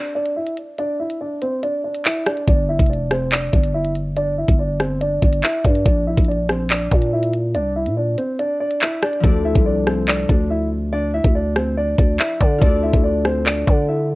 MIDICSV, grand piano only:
0, 0, Header, 1, 2, 480
1, 0, Start_track
1, 0, Key_signature, -1, "minor"
1, 0, Tempo, 422535
1, 893, Time_signature, 4, 2, 24, 8
1, 16076, End_track
2, 0, Start_track
2, 0, Title_t, "Grand piano"
2, 0, Program_c, 0, 0
2, 0, Note_on_c, 0, 62, 58
2, 0, Note_on_c, 0, 74, 83
2, 131, Note_off_c, 0, 74, 0
2, 136, Note_off_c, 0, 62, 0
2, 172, Note_on_c, 0, 74, 86
2, 182, Note_on_c, 0, 62, 69
2, 370, Note_off_c, 0, 74, 0
2, 376, Note_off_c, 0, 62, 0
2, 412, Note_on_c, 0, 76, 79
2, 422, Note_on_c, 0, 64, 58
2, 610, Note_off_c, 0, 76, 0
2, 616, Note_off_c, 0, 64, 0
2, 894, Note_on_c, 0, 74, 108
2, 903, Note_on_c, 0, 62, 84
2, 1091, Note_off_c, 0, 74, 0
2, 1097, Note_off_c, 0, 62, 0
2, 1134, Note_on_c, 0, 76, 80
2, 1143, Note_on_c, 0, 64, 57
2, 1331, Note_off_c, 0, 76, 0
2, 1337, Note_off_c, 0, 64, 0
2, 1375, Note_on_c, 0, 74, 81
2, 1384, Note_on_c, 0, 62, 62
2, 1572, Note_off_c, 0, 74, 0
2, 1577, Note_off_c, 0, 62, 0
2, 1614, Note_on_c, 0, 72, 81
2, 1623, Note_on_c, 0, 60, 60
2, 1811, Note_off_c, 0, 72, 0
2, 1817, Note_off_c, 0, 60, 0
2, 1854, Note_on_c, 0, 74, 92
2, 1863, Note_on_c, 0, 62, 70
2, 2051, Note_off_c, 0, 74, 0
2, 2057, Note_off_c, 0, 62, 0
2, 2093, Note_on_c, 0, 74, 75
2, 2103, Note_on_c, 0, 62, 60
2, 2291, Note_off_c, 0, 74, 0
2, 2296, Note_off_c, 0, 62, 0
2, 2333, Note_on_c, 0, 76, 78
2, 2342, Note_on_c, 0, 64, 69
2, 2531, Note_off_c, 0, 76, 0
2, 2536, Note_off_c, 0, 64, 0
2, 2573, Note_on_c, 0, 74, 90
2, 2582, Note_on_c, 0, 62, 69
2, 2771, Note_off_c, 0, 74, 0
2, 2776, Note_off_c, 0, 62, 0
2, 2814, Note_on_c, 0, 74, 96
2, 2824, Note_on_c, 0, 62, 76
2, 3011, Note_off_c, 0, 74, 0
2, 3017, Note_off_c, 0, 62, 0
2, 3054, Note_on_c, 0, 76, 88
2, 3063, Note_on_c, 0, 64, 62
2, 3251, Note_off_c, 0, 76, 0
2, 3256, Note_off_c, 0, 64, 0
2, 3291, Note_on_c, 0, 74, 83
2, 3300, Note_on_c, 0, 62, 61
2, 3490, Note_off_c, 0, 74, 0
2, 3495, Note_off_c, 0, 62, 0
2, 3531, Note_on_c, 0, 72, 77
2, 3540, Note_on_c, 0, 60, 57
2, 3729, Note_off_c, 0, 72, 0
2, 3735, Note_off_c, 0, 60, 0
2, 3771, Note_on_c, 0, 74, 80
2, 3781, Note_on_c, 0, 62, 63
2, 3970, Note_off_c, 0, 74, 0
2, 3975, Note_off_c, 0, 62, 0
2, 4011, Note_on_c, 0, 74, 84
2, 4020, Note_on_c, 0, 62, 64
2, 4210, Note_off_c, 0, 74, 0
2, 4215, Note_off_c, 0, 62, 0
2, 4251, Note_on_c, 0, 76, 87
2, 4260, Note_on_c, 0, 64, 62
2, 4449, Note_off_c, 0, 76, 0
2, 4455, Note_off_c, 0, 64, 0
2, 4732, Note_on_c, 0, 74, 112
2, 4741, Note_on_c, 0, 62, 89
2, 4930, Note_off_c, 0, 74, 0
2, 4936, Note_off_c, 0, 62, 0
2, 4974, Note_on_c, 0, 76, 77
2, 4982, Note_on_c, 0, 64, 62
2, 5171, Note_off_c, 0, 76, 0
2, 5176, Note_off_c, 0, 64, 0
2, 5213, Note_on_c, 0, 74, 88
2, 5222, Note_on_c, 0, 62, 62
2, 5411, Note_off_c, 0, 74, 0
2, 5416, Note_off_c, 0, 62, 0
2, 5452, Note_on_c, 0, 72, 86
2, 5461, Note_on_c, 0, 60, 66
2, 5650, Note_off_c, 0, 72, 0
2, 5656, Note_off_c, 0, 60, 0
2, 5689, Note_on_c, 0, 74, 87
2, 5699, Note_on_c, 0, 62, 70
2, 5889, Note_off_c, 0, 74, 0
2, 5894, Note_off_c, 0, 62, 0
2, 5934, Note_on_c, 0, 74, 86
2, 5943, Note_on_c, 0, 62, 66
2, 6131, Note_off_c, 0, 74, 0
2, 6137, Note_off_c, 0, 62, 0
2, 6172, Note_on_c, 0, 76, 87
2, 6181, Note_on_c, 0, 64, 70
2, 6370, Note_off_c, 0, 76, 0
2, 6375, Note_off_c, 0, 64, 0
2, 6413, Note_on_c, 0, 74, 85
2, 6423, Note_on_c, 0, 62, 69
2, 6611, Note_off_c, 0, 74, 0
2, 6616, Note_off_c, 0, 62, 0
2, 6653, Note_on_c, 0, 74, 97
2, 6663, Note_on_c, 0, 62, 76
2, 6851, Note_off_c, 0, 74, 0
2, 6857, Note_off_c, 0, 62, 0
2, 6896, Note_on_c, 0, 76, 86
2, 6904, Note_on_c, 0, 64, 66
2, 7092, Note_off_c, 0, 76, 0
2, 7097, Note_off_c, 0, 64, 0
2, 7134, Note_on_c, 0, 74, 81
2, 7143, Note_on_c, 0, 62, 60
2, 7331, Note_off_c, 0, 74, 0
2, 7337, Note_off_c, 0, 62, 0
2, 7374, Note_on_c, 0, 72, 74
2, 7383, Note_on_c, 0, 60, 62
2, 7572, Note_off_c, 0, 72, 0
2, 7577, Note_off_c, 0, 60, 0
2, 7614, Note_on_c, 0, 74, 82
2, 7623, Note_on_c, 0, 62, 60
2, 7812, Note_off_c, 0, 74, 0
2, 7817, Note_off_c, 0, 62, 0
2, 7853, Note_on_c, 0, 74, 78
2, 7863, Note_on_c, 0, 62, 67
2, 8051, Note_off_c, 0, 74, 0
2, 8057, Note_off_c, 0, 62, 0
2, 8095, Note_on_c, 0, 76, 76
2, 8104, Note_on_c, 0, 64, 68
2, 8292, Note_off_c, 0, 76, 0
2, 8297, Note_off_c, 0, 64, 0
2, 8571, Note_on_c, 0, 74, 112
2, 8581, Note_on_c, 0, 62, 84
2, 8770, Note_off_c, 0, 74, 0
2, 8776, Note_off_c, 0, 62, 0
2, 8813, Note_on_c, 0, 76, 80
2, 8823, Note_on_c, 0, 64, 60
2, 9011, Note_off_c, 0, 76, 0
2, 9016, Note_off_c, 0, 64, 0
2, 9054, Note_on_c, 0, 74, 76
2, 9063, Note_on_c, 0, 62, 58
2, 9251, Note_off_c, 0, 74, 0
2, 9257, Note_off_c, 0, 62, 0
2, 9291, Note_on_c, 0, 72, 81
2, 9300, Note_on_c, 0, 60, 61
2, 9489, Note_off_c, 0, 72, 0
2, 9495, Note_off_c, 0, 60, 0
2, 9532, Note_on_c, 0, 74, 92
2, 9540, Note_on_c, 0, 62, 70
2, 9730, Note_off_c, 0, 74, 0
2, 9735, Note_off_c, 0, 62, 0
2, 9772, Note_on_c, 0, 74, 83
2, 9782, Note_on_c, 0, 62, 62
2, 9970, Note_off_c, 0, 74, 0
2, 9976, Note_off_c, 0, 62, 0
2, 10012, Note_on_c, 0, 76, 89
2, 10021, Note_on_c, 0, 64, 64
2, 10210, Note_off_c, 0, 76, 0
2, 10216, Note_off_c, 0, 64, 0
2, 10253, Note_on_c, 0, 74, 91
2, 10263, Note_on_c, 0, 62, 73
2, 10451, Note_off_c, 0, 74, 0
2, 10457, Note_off_c, 0, 62, 0
2, 10493, Note_on_c, 0, 74, 92
2, 10502, Note_on_c, 0, 62, 77
2, 10691, Note_off_c, 0, 74, 0
2, 10696, Note_off_c, 0, 62, 0
2, 10734, Note_on_c, 0, 76, 81
2, 10743, Note_on_c, 0, 64, 66
2, 10931, Note_off_c, 0, 76, 0
2, 10937, Note_off_c, 0, 64, 0
2, 10973, Note_on_c, 0, 74, 76
2, 10983, Note_on_c, 0, 62, 66
2, 11171, Note_off_c, 0, 74, 0
2, 11176, Note_off_c, 0, 62, 0
2, 11213, Note_on_c, 0, 72, 75
2, 11222, Note_on_c, 0, 60, 68
2, 11411, Note_off_c, 0, 72, 0
2, 11416, Note_off_c, 0, 60, 0
2, 11452, Note_on_c, 0, 74, 82
2, 11461, Note_on_c, 0, 62, 65
2, 11650, Note_off_c, 0, 74, 0
2, 11656, Note_off_c, 0, 62, 0
2, 11691, Note_on_c, 0, 74, 76
2, 11700, Note_on_c, 0, 62, 71
2, 11890, Note_off_c, 0, 74, 0
2, 11895, Note_off_c, 0, 62, 0
2, 11933, Note_on_c, 0, 76, 74
2, 11942, Note_on_c, 0, 64, 63
2, 12131, Note_off_c, 0, 76, 0
2, 12136, Note_off_c, 0, 64, 0
2, 12414, Note_on_c, 0, 74, 107
2, 12422, Note_on_c, 0, 62, 81
2, 12611, Note_off_c, 0, 74, 0
2, 12616, Note_off_c, 0, 62, 0
2, 12655, Note_on_c, 0, 76, 81
2, 12663, Note_on_c, 0, 64, 62
2, 12852, Note_off_c, 0, 76, 0
2, 12857, Note_off_c, 0, 64, 0
2, 12894, Note_on_c, 0, 74, 77
2, 12903, Note_on_c, 0, 62, 67
2, 13092, Note_off_c, 0, 74, 0
2, 13096, Note_off_c, 0, 62, 0
2, 13136, Note_on_c, 0, 72, 76
2, 13145, Note_on_c, 0, 60, 62
2, 13332, Note_off_c, 0, 72, 0
2, 13338, Note_off_c, 0, 60, 0
2, 13374, Note_on_c, 0, 74, 90
2, 13384, Note_on_c, 0, 62, 73
2, 13572, Note_off_c, 0, 74, 0
2, 13577, Note_off_c, 0, 62, 0
2, 13618, Note_on_c, 0, 74, 85
2, 13626, Note_on_c, 0, 62, 58
2, 13814, Note_off_c, 0, 74, 0
2, 13818, Note_off_c, 0, 62, 0
2, 13853, Note_on_c, 0, 76, 82
2, 13862, Note_on_c, 0, 64, 61
2, 14051, Note_off_c, 0, 76, 0
2, 14056, Note_off_c, 0, 64, 0
2, 14094, Note_on_c, 0, 74, 94
2, 14104, Note_on_c, 0, 62, 70
2, 14291, Note_off_c, 0, 74, 0
2, 14297, Note_off_c, 0, 62, 0
2, 14332, Note_on_c, 0, 74, 108
2, 14339, Note_on_c, 0, 62, 77
2, 14530, Note_off_c, 0, 74, 0
2, 14535, Note_off_c, 0, 62, 0
2, 14571, Note_on_c, 0, 76, 81
2, 14580, Note_on_c, 0, 64, 69
2, 14770, Note_off_c, 0, 76, 0
2, 14775, Note_off_c, 0, 64, 0
2, 14810, Note_on_c, 0, 74, 82
2, 14820, Note_on_c, 0, 62, 65
2, 15009, Note_off_c, 0, 74, 0
2, 15015, Note_off_c, 0, 62, 0
2, 15052, Note_on_c, 0, 72, 80
2, 15061, Note_on_c, 0, 60, 64
2, 15250, Note_off_c, 0, 72, 0
2, 15256, Note_off_c, 0, 60, 0
2, 15292, Note_on_c, 0, 74, 86
2, 15300, Note_on_c, 0, 62, 58
2, 15490, Note_off_c, 0, 74, 0
2, 15495, Note_off_c, 0, 62, 0
2, 15532, Note_on_c, 0, 74, 88
2, 15541, Note_on_c, 0, 62, 68
2, 15730, Note_off_c, 0, 74, 0
2, 15736, Note_off_c, 0, 62, 0
2, 15773, Note_on_c, 0, 76, 78
2, 15782, Note_on_c, 0, 64, 58
2, 15971, Note_off_c, 0, 76, 0
2, 15976, Note_off_c, 0, 64, 0
2, 16076, End_track
0, 0, End_of_file